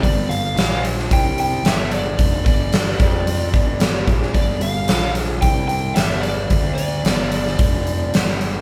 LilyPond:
<<
  \new Staff \with { instrumentName = "Lead electric guitar" } { \time 4/4 \key d \dorian \tempo 4 = 111 d''8 f''4 r8 g''8 g''8 e''8 d''8~ | d''8 d''2. r8 | d''8 f''4 r8 g''8 g''8 e''8 d''8~ | d''8 d''2. r8 | }
  \new Staff \with { instrumentName = "Picked electric bass" } { \clef bass \time 4/4 \key d \dorian g,,8 g,,8 bes,,4 c,4 g,,4 | f,,8 g,,4 f,4 g,,8 g,,8 bes,,8 | g,,8 g,,8 bes,,4 c,4 g,,4 | d,4 g,,4 f,,4 g,,4 | }
  \new DrumStaff \with { instrumentName = "Drums" } \drummode { \time 4/4 <hho bd>8 hho8 <hho sn>8 hho16 sn16 <hho bd>8 hho8 <hho sn>8 hho8 | <hho bd>8 <hho bd>8 <hho sn>8 <hho bd>8 hho8 <hho bd>8 <hho sn>8 <hho bd>16 sn16 | <hho bd>8 hho8 <hho sn>8 hho8 <hho bd>8 hho8 <hho sn>8 hho8 | <hho bd>8 hho8 <hho sn>8 hho16 sn16 <hho bd>8 hho8 <hho sn>8 hho8 | }
>>